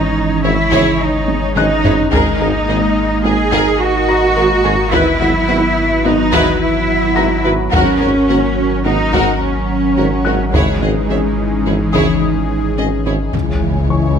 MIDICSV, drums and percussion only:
0, 0, Header, 1, 2, 480
1, 0, Start_track
1, 0, Tempo, 560748
1, 1816, Time_signature, 5, 2, 24, 8
1, 12148, End_track
2, 0, Start_track
2, 0, Title_t, "Taiko and cinematic ensemble drums"
2, 619, Note_on_c, 9, 41, 76
2, 705, Note_off_c, 9, 41, 0
2, 1098, Note_on_c, 9, 48, 77
2, 1183, Note_off_c, 9, 48, 0
2, 1337, Note_on_c, 9, 47, 64
2, 1423, Note_off_c, 9, 47, 0
2, 1577, Note_on_c, 9, 43, 84
2, 1663, Note_off_c, 9, 43, 0
2, 1821, Note_on_c, 9, 41, 93
2, 1907, Note_off_c, 9, 41, 0
2, 3016, Note_on_c, 9, 41, 75
2, 3102, Note_off_c, 9, 41, 0
2, 4218, Note_on_c, 9, 41, 94
2, 4304, Note_off_c, 9, 41, 0
2, 5420, Note_on_c, 9, 41, 75
2, 5506, Note_off_c, 9, 41, 0
2, 6620, Note_on_c, 9, 41, 100
2, 6706, Note_off_c, 9, 41, 0
2, 7819, Note_on_c, 9, 41, 72
2, 7905, Note_off_c, 9, 41, 0
2, 9022, Note_on_c, 9, 41, 88
2, 9108, Note_off_c, 9, 41, 0
2, 10218, Note_on_c, 9, 41, 72
2, 10304, Note_off_c, 9, 41, 0
2, 11416, Note_on_c, 9, 41, 42
2, 11501, Note_off_c, 9, 41, 0
2, 12148, End_track
0, 0, End_of_file